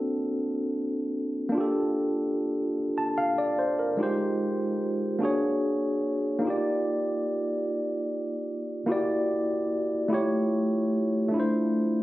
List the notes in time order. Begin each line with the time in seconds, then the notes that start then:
Already playing: A#3 C4 D4 F#4 A4
1.49 A#3 D4
1.55 F4 G4
1.60 A4
2.98 A5
3.18 F5
3.38 D5
3.59 C5
3.79 A#4
3.97 G#3 D#4 F4
4.01 G4 C5
5.19 A#3 D4 F#4
5.23 G#4 C#5
6.39 A#3 D#4
6.45 F4 G4
6.50 D5
8.86 A#3 E4 F#4
8.90 G4 D5
10.08 A3 E4 F4
10.13 G4 C#5
11.28 A3 D4
11.34 E4 F4
11.40 C5